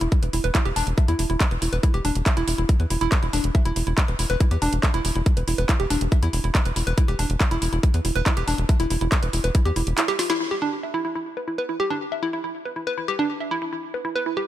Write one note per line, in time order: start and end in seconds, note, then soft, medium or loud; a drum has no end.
0.01 0.08 E1 loud
0.01 0.04 E4 medium
0.01 closed hi-hat medium
0.12 kick loud
0.12 closed hi-hat medium
0.23 0.29 E1 medium
0.23 0.25 B4 medium
0.23 closed hi-hat medium
0.33 0.40 E1 loud
0.33 0.36 E4 medium
0.33 open hi-hat loud
0.44 0.50 E1 medium
0.44 0.48 B4 loud
0.44 closed hi-hat soft
0.55 0.59 E4 medium
0.55 kick loud
0.55 clap loud
0.55 closed hi-hat medium
0.65 0.72 E1 medium
0.65 0.68 G4 loud
0.65 closed hi-hat medium
0.76 0.83 E1 loud
0.76 0.82 D4 loud
0.76 open hi-hat loud
0.87 0.93 E1 medium
0.87 closed hi-hat medium
0.98 1.00 E5 medium
0.98 kick loud
0.98 closed hi-hat medium
1.08 1.15 E2 medium
1.08 1.12 E4 loud
1.08 closed hi-hat medium
1.19 1.25 E1 loud
1.19 1.25 E4 medium
1.19 open hi-hat loud
1.30 1.36 E1 medium
1.30 1.32 E4 medium
1.30 closed hi-hat medium
1.40 kick loud
1.40 clap loud
1.40 closed hi-hat medium
1.51 1.58 E1 medium
1.51 1.54 B4 medium
1.51 closed hi-hat medium
1.62 1.68 E1 loud
1.62 1.64 E4 medium
1.62 open hi-hat loud
1.73 1.79 E1 medium
1.73 1.77 B4 loud
1.73 closed hi-hat medium
1.83 1.87 E4 medium
1.83 kick loud
1.83 closed hi-hat medium
1.94 2.00 E1 medium
1.94 1.96 G4 loud
1.94 closed hi-hat medium
2.05 2.11 E1 loud
2.05 2.11 D4 loud
2.05 open hi-hat loud
2.15 2.22 E1 medium
2.15 closed hi-hat medium
2.26 2.29 E5 medium
2.26 kick loud
2.26 clap loud
2.26 closed hi-hat medium
2.37 2.43 E1 medium
2.37 2.41 E4 loud
2.37 closed hi-hat soft
2.48 2.54 E1 loud
2.48 2.54 E4 medium
2.48 open hi-hat loud
2.58 2.65 E1 loud
2.58 2.61 E4 medium
2.58 closed hi-hat medium
2.69 kick loud
2.69 closed hi-hat medium
2.80 2.86 E2 medium
2.80 2.82 B4 medium
2.80 closed hi-hat soft
2.90 2.97 E1 loud
2.90 2.94 E4 medium
2.90 open hi-hat loud
3.01 3.08 E1 medium
3.01 3.07 E4 loud
3.01 closed hi-hat medium
3.12 3.16 B4 medium
3.12 kick loud
3.12 clap loud
3.12 closed hi-hat medium
3.23 3.29 E1 medium
3.23 3.27 E4 medium
3.23 closed hi-hat soft
3.33 3.40 E1 loud
3.33 3.36 D4 loud
3.33 open hi-hat loud
3.44 3.50 E1 medium
3.44 closed hi-hat medium
3.55 3.57 E5 medium
3.55 kick loud
3.55 closed hi-hat medium
3.65 3.72 E1 medium
3.65 3.69 E4 loud
3.65 closed hi-hat medium
3.76 3.83 E1 loud
3.76 3.82 E4 medium
3.76 open hi-hat loud
3.87 3.93 E1 medium
3.87 3.89 E4 medium
3.87 closed hi-hat soft
3.98 kick loud
3.98 clap loud
3.98 closed hi-hat medium
4.08 4.15 E1 medium
4.08 4.11 B4 medium
4.08 closed hi-hat medium
4.19 4.25 E1 loud
4.19 4.21 E4 medium
4.19 open hi-hat loud
4.30 4.36 E1 medium
4.30 4.34 B4 loud
4.30 closed hi-hat medium
4.40 4.44 E4 medium
4.40 kick loud
4.40 closed hi-hat medium
4.51 4.58 E2 medium
4.51 4.54 G4 loud
4.51 closed hi-hat medium
4.62 4.68 E1 loud
4.62 4.68 D4 loud
4.62 open hi-hat loud
4.73 4.79 E1 medium
4.73 closed hi-hat medium
4.83 4.86 E5 medium
4.83 kick loud
4.83 clap loud
4.83 closed hi-hat medium
4.94 5.00 E1 medium
4.94 4.98 E4 loud
4.94 closed hi-hat medium
5.05 5.11 E1 loud
5.05 5.11 E4 medium
5.05 open hi-hat loud
5.15 5.22 E1 loud
5.15 5.18 E4 medium
5.15 closed hi-hat medium
5.26 kick loud
5.26 closed hi-hat medium
5.37 5.43 E1 medium
5.37 5.39 B4 medium
5.37 closed hi-hat medium
5.48 5.54 E1 loud
5.48 5.50 E4 medium
5.48 open hi-hat loud
5.58 5.65 E1 loud
5.58 5.62 B4 loud
5.58 closed hi-hat medium
5.69 5.73 E4 medium
5.69 kick loud
5.69 clap loud
5.69 closed hi-hat medium
5.80 5.86 E1 medium
5.80 5.82 G4 loud
5.80 closed hi-hat medium
5.90 5.97 E1 loud
5.90 5.96 D4 loud
5.90 open hi-hat loud
6.01 6.08 E1 loud
6.01 closed hi-hat medium
6.12 6.14 E5 medium
6.12 kick loud
6.12 closed hi-hat medium
6.23 6.29 E2 medium
6.23 6.27 E4 loud
6.23 closed hi-hat medium
6.33 6.40 E1 loud
6.33 6.39 E4 medium
6.33 open hi-hat loud
6.44 6.50 E1 medium
6.44 6.46 E4 medium
6.44 closed hi-hat medium
6.55 kick loud
6.55 clap loud
6.55 closed hi-hat medium
6.65 6.72 E1 medium
6.65 6.68 B4 medium
6.65 closed hi-hat medium
6.76 6.83 E1 loud
6.76 6.79 E4 medium
6.76 open hi-hat loud
6.87 6.93 E1 loud
6.87 6.91 B4 loud
6.87 closed hi-hat medium
6.98 7.02 E4 medium
6.98 kick loud
6.98 closed hi-hat medium
7.08 7.15 E1 medium
7.08 7.11 G4 loud
7.08 closed hi-hat medium
7.19 7.25 E1 loud
7.19 7.25 D4 loud
7.19 open hi-hat loud
7.30 7.36 E1 medium
7.30 closed hi-hat medium
7.40 7.43 E5 medium
7.40 kick loud
7.40 clap loud
7.40 closed hi-hat medium
7.51 7.58 E1 medium
7.51 7.55 E4 loud
7.51 closed hi-hat medium
7.62 7.68 E1 loud
7.62 7.68 E4 medium
7.62 open hi-hat loud
7.73 7.79 E1 loud
7.73 7.75 E4 medium
7.73 closed hi-hat medium
7.83 kick loud
7.83 closed hi-hat medium
7.94 8.00 E2 medium
7.94 7.96 B4 medium
7.94 closed hi-hat medium
8.05 8.11 E1 loud
8.05 8.07 E4 medium
8.05 open hi-hat loud
8.15 8.22 E1 medium
8.15 8.19 B4 loud
8.15 closed hi-hat medium
8.26 8.30 E4 medium
8.26 kick loud
8.26 clap loud
8.26 closed hi-hat medium
8.37 8.43 E1 medium
8.37 8.39 G4 loud
8.37 closed hi-hat medium
8.48 8.54 E1 loud
8.48 8.54 D4 loud
8.48 open hi-hat medium
8.58 8.65 E1 loud
8.58 closed hi-hat medium
8.69 8.71 E5 medium
8.69 kick loud
8.69 closed hi-hat medium
8.80 8.86 E1 medium
8.80 8.84 E4 loud
8.80 closed hi-hat medium
8.90 8.97 E1 loud
8.90 8.96 E4 medium
8.90 open hi-hat loud
9.01 9.08 E1 medium
9.01 9.04 E4 medium
9.01 closed hi-hat medium
9.12 kick loud
9.12 clap loud
9.12 closed hi-hat medium
9.23 9.29 E1 medium
9.23 9.25 B4 medium
9.23 closed hi-hat medium
9.33 9.40 E1 loud
9.33 9.36 E4 medium
9.33 open hi-hat loud
9.44 9.50 E1 loud
9.44 9.48 B4 loud
9.44 closed hi-hat medium
9.55 9.59 E4 medium
9.55 kick loud
9.55 closed hi-hat medium
9.65 9.72 E2 medium
9.65 9.68 G4 loud
9.65 closed hi-hat medium
9.76 9.83 E1 loud
9.76 9.80 E4 medium
9.76 open hi-hat loud
9.87 9.93 E1 medium
9.87 closed hi-hat medium
9.98 10.00 E4 medium
9.98 clap loud
9.98 closed hi-hat medium
10.08 10.12 G4 loud
10.08 snare medium
10.08 closed hi-hat medium
10.19 10.25 F4 medium
10.19 snare medium
10.19 open hi-hat loud
10.30 10.34 E4 loud
10.30 snare medium
10.30 closed hi-hat medium
10.41 10.44 E4 medium
10.51 10.54 G4 loud
10.62 10.68 D4 loud
10.83 10.86 E5 medium
10.94 10.98 E4 medium
11.05 11.11 E4 medium
11.15 11.18 E4 medium
11.37 11.39 B4 medium
11.48 11.50 E4 medium
11.58 11.62 B4 loud
11.69 11.73 E4 medium
11.80 11.82 G4 loud
11.90 11.96 D4 loud
12.12 12.14 E5 medium
12.23 12.27 E4 loud
12.33 12.39 E4 medium
12.44 12.46 E4 medium
12.65 12.68 B4 medium
12.76 12.79 E4 medium
12.87 12.91 B4 loud
12.98 13.02 E4 medium
13.08 13.11 G4 loud
13.19 13.25 D4 loud
13.40 13.43 E5 medium
13.51 13.55 E4 loud
13.62 13.68 E4 medium
13.73 13.75 E4 medium
13.94 13.96 B4 medium
14.05 14.07 E4 medium
14.16 14.19 B4 loud
14.26 14.30 E4 medium
14.37 14.39 G4 medium